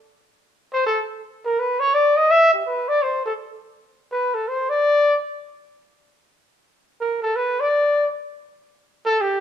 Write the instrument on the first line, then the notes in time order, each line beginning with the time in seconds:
trumpet
0.73 C5
0.86 A4
1.45 A#4
1.59 B4
1.80 C#5
1.94 D5
2.17 D#5
2.31 E5
2.54 G4
2.66 B4
2.89 D5
3.02 C5
3.25 A4
4.12 B4
4.34 A4
4.48 C5
4.70 D5
7.01 A#4
7.22 A4
7.36 B4
7.60 D5
9.06 A4
9.21 G4